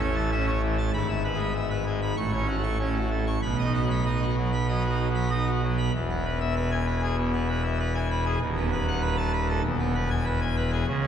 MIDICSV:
0, 0, Header, 1, 2, 480
1, 0, Start_track
1, 0, Key_signature, 4, "major"
1, 0, Tempo, 617920
1, 726, Time_signature, 4, 2, 24, 8
1, 2167, Tempo, 630252
1, 4567, Tempo, 617284
1, 8556, End_track
2, 0, Start_track
2, 0, Title_t, "Pipe organ"
2, 0, Program_c, 0, 19
2, 0, Note_on_c, 0, 33, 82
2, 0, Note_on_c, 0, 45, 80
2, 6, Note_on_c, 0, 73, 58
2, 87, Note_on_c, 0, 52, 63
2, 114, Note_off_c, 0, 73, 0
2, 124, Note_on_c, 0, 81, 64
2, 230, Note_off_c, 0, 52, 0
2, 233, Note_off_c, 0, 81, 0
2, 247, Note_on_c, 0, 61, 65
2, 247, Note_on_c, 0, 76, 69
2, 354, Note_off_c, 0, 76, 0
2, 365, Note_on_c, 0, 73, 65
2, 390, Note_off_c, 0, 61, 0
2, 473, Note_off_c, 0, 73, 0
2, 489, Note_on_c, 0, 52, 61
2, 595, Note_off_c, 0, 52, 0
2, 606, Note_on_c, 0, 81, 69
2, 701, Note_off_c, 0, 45, 0
2, 702, Note_off_c, 0, 33, 0
2, 708, Note_off_c, 0, 81, 0
2, 726, Note_on_c, 0, 44, 72
2, 727, Note_on_c, 0, 83, 92
2, 729, Note_on_c, 0, 32, 72
2, 833, Note_off_c, 0, 83, 0
2, 846, Note_on_c, 0, 76, 65
2, 952, Note_off_c, 0, 76, 0
2, 965, Note_on_c, 0, 71, 60
2, 1041, Note_on_c, 0, 56, 57
2, 1071, Note_off_c, 0, 71, 0
2, 1082, Note_on_c, 0, 83, 63
2, 1184, Note_off_c, 0, 56, 0
2, 1189, Note_off_c, 0, 83, 0
2, 1204, Note_on_c, 0, 76, 62
2, 1310, Note_off_c, 0, 76, 0
2, 1323, Note_on_c, 0, 71, 58
2, 1430, Note_off_c, 0, 71, 0
2, 1448, Note_on_c, 0, 56, 59
2, 1553, Note_off_c, 0, 56, 0
2, 1569, Note_on_c, 0, 83, 58
2, 1655, Note_off_c, 0, 44, 0
2, 1657, Note_off_c, 0, 32, 0
2, 1669, Note_off_c, 0, 83, 0
2, 1685, Note_on_c, 0, 45, 69
2, 1686, Note_on_c, 0, 85, 83
2, 1687, Note_on_c, 0, 33, 71
2, 1793, Note_off_c, 0, 85, 0
2, 1808, Note_on_c, 0, 73, 57
2, 1843, Note_on_c, 0, 61, 53
2, 1915, Note_off_c, 0, 73, 0
2, 1925, Note_on_c, 0, 66, 55
2, 1988, Note_off_c, 0, 61, 0
2, 2006, Note_on_c, 0, 57, 51
2, 2033, Note_off_c, 0, 66, 0
2, 2047, Note_on_c, 0, 85, 63
2, 2150, Note_off_c, 0, 57, 0
2, 2155, Note_off_c, 0, 85, 0
2, 2168, Note_on_c, 0, 73, 57
2, 2171, Note_on_c, 0, 61, 53
2, 2274, Note_off_c, 0, 73, 0
2, 2286, Note_on_c, 0, 66, 55
2, 2311, Note_off_c, 0, 61, 0
2, 2393, Note_off_c, 0, 66, 0
2, 2409, Note_on_c, 0, 57, 51
2, 2515, Note_off_c, 0, 57, 0
2, 2532, Note_on_c, 0, 85, 60
2, 2618, Note_off_c, 0, 45, 0
2, 2619, Note_off_c, 0, 33, 0
2, 2631, Note_off_c, 0, 85, 0
2, 2649, Note_on_c, 0, 35, 58
2, 2649, Note_on_c, 0, 47, 64
2, 2649, Note_on_c, 0, 83, 83
2, 2755, Note_off_c, 0, 83, 0
2, 2773, Note_on_c, 0, 75, 49
2, 2814, Note_on_c, 0, 63, 50
2, 2878, Note_off_c, 0, 75, 0
2, 2893, Note_on_c, 0, 66, 61
2, 2954, Note_off_c, 0, 63, 0
2, 2979, Note_on_c, 0, 54, 54
2, 2998, Note_off_c, 0, 66, 0
2, 3015, Note_on_c, 0, 83, 58
2, 3118, Note_off_c, 0, 54, 0
2, 3119, Note_off_c, 0, 83, 0
2, 3133, Note_on_c, 0, 63, 51
2, 3135, Note_on_c, 0, 75, 56
2, 3240, Note_off_c, 0, 75, 0
2, 3252, Note_on_c, 0, 66, 56
2, 3275, Note_off_c, 0, 63, 0
2, 3358, Note_off_c, 0, 66, 0
2, 3372, Note_on_c, 0, 54, 60
2, 3478, Note_off_c, 0, 54, 0
2, 3489, Note_on_c, 0, 83, 63
2, 3596, Note_off_c, 0, 83, 0
2, 3611, Note_on_c, 0, 54, 55
2, 3611, Note_on_c, 0, 75, 63
2, 3717, Note_off_c, 0, 75, 0
2, 3727, Note_on_c, 0, 66, 56
2, 3752, Note_off_c, 0, 54, 0
2, 3770, Note_on_c, 0, 63, 43
2, 3834, Note_off_c, 0, 66, 0
2, 3849, Note_on_c, 0, 54, 50
2, 3908, Note_off_c, 0, 54, 0
2, 3912, Note_off_c, 0, 63, 0
2, 3923, Note_on_c, 0, 54, 54
2, 3963, Note_on_c, 0, 83, 57
2, 4068, Note_off_c, 0, 54, 0
2, 4072, Note_off_c, 0, 83, 0
2, 4083, Note_on_c, 0, 63, 56
2, 4084, Note_on_c, 0, 75, 55
2, 4193, Note_off_c, 0, 75, 0
2, 4208, Note_on_c, 0, 66, 52
2, 4228, Note_off_c, 0, 63, 0
2, 4315, Note_off_c, 0, 66, 0
2, 4328, Note_on_c, 0, 54, 54
2, 4435, Note_off_c, 0, 54, 0
2, 4442, Note_on_c, 0, 83, 56
2, 4538, Note_off_c, 0, 35, 0
2, 4538, Note_off_c, 0, 47, 0
2, 4545, Note_off_c, 0, 83, 0
2, 4562, Note_on_c, 0, 40, 74
2, 4566, Note_on_c, 0, 28, 72
2, 4688, Note_on_c, 0, 59, 54
2, 4796, Note_off_c, 0, 59, 0
2, 4807, Note_on_c, 0, 71, 59
2, 4915, Note_off_c, 0, 71, 0
2, 4926, Note_on_c, 0, 76, 56
2, 5035, Note_off_c, 0, 76, 0
2, 5049, Note_on_c, 0, 71, 67
2, 5156, Note_off_c, 0, 71, 0
2, 5169, Note_on_c, 0, 80, 79
2, 5276, Note_off_c, 0, 80, 0
2, 5288, Note_on_c, 0, 71, 62
2, 5395, Note_off_c, 0, 71, 0
2, 5406, Note_on_c, 0, 68, 65
2, 5514, Note_off_c, 0, 68, 0
2, 5524, Note_on_c, 0, 47, 65
2, 5632, Note_off_c, 0, 47, 0
2, 5650, Note_on_c, 0, 59, 59
2, 5756, Note_off_c, 0, 59, 0
2, 5769, Note_on_c, 0, 71, 64
2, 5875, Note_off_c, 0, 71, 0
2, 5887, Note_on_c, 0, 76, 59
2, 5995, Note_off_c, 0, 76, 0
2, 6009, Note_on_c, 0, 71, 72
2, 6116, Note_off_c, 0, 71, 0
2, 6129, Note_on_c, 0, 80, 63
2, 6236, Note_off_c, 0, 80, 0
2, 6251, Note_on_c, 0, 71, 66
2, 6358, Note_off_c, 0, 71, 0
2, 6370, Note_on_c, 0, 68, 67
2, 6456, Note_off_c, 0, 40, 0
2, 6458, Note_off_c, 0, 28, 0
2, 6472, Note_off_c, 0, 68, 0
2, 6487, Note_on_c, 0, 39, 78
2, 6488, Note_on_c, 0, 27, 68
2, 6612, Note_on_c, 0, 59, 59
2, 6718, Note_off_c, 0, 59, 0
2, 6727, Note_on_c, 0, 71, 70
2, 6835, Note_off_c, 0, 71, 0
2, 6849, Note_on_c, 0, 78, 65
2, 6956, Note_off_c, 0, 78, 0
2, 6961, Note_on_c, 0, 71, 71
2, 7071, Note_off_c, 0, 71, 0
2, 7079, Note_on_c, 0, 81, 89
2, 7190, Note_off_c, 0, 81, 0
2, 7203, Note_on_c, 0, 71, 67
2, 7312, Note_off_c, 0, 71, 0
2, 7325, Note_on_c, 0, 69, 67
2, 7418, Note_off_c, 0, 27, 0
2, 7418, Note_off_c, 0, 39, 0
2, 7428, Note_off_c, 0, 69, 0
2, 7440, Note_on_c, 0, 28, 74
2, 7441, Note_on_c, 0, 40, 92
2, 7563, Note_on_c, 0, 59, 56
2, 7672, Note_off_c, 0, 59, 0
2, 7683, Note_on_c, 0, 71, 69
2, 7792, Note_off_c, 0, 71, 0
2, 7806, Note_on_c, 0, 80, 83
2, 7913, Note_off_c, 0, 80, 0
2, 7922, Note_on_c, 0, 71, 75
2, 8031, Note_off_c, 0, 71, 0
2, 8046, Note_on_c, 0, 80, 66
2, 8153, Note_off_c, 0, 80, 0
2, 8163, Note_on_c, 0, 71, 62
2, 8271, Note_off_c, 0, 71, 0
2, 8285, Note_on_c, 0, 68, 74
2, 8373, Note_off_c, 0, 28, 0
2, 8374, Note_off_c, 0, 40, 0
2, 8387, Note_off_c, 0, 68, 0
2, 8404, Note_on_c, 0, 49, 84
2, 8405, Note_on_c, 0, 37, 81
2, 8531, Note_on_c, 0, 61, 67
2, 8556, Note_off_c, 0, 37, 0
2, 8556, Note_off_c, 0, 49, 0
2, 8556, Note_off_c, 0, 61, 0
2, 8556, End_track
0, 0, End_of_file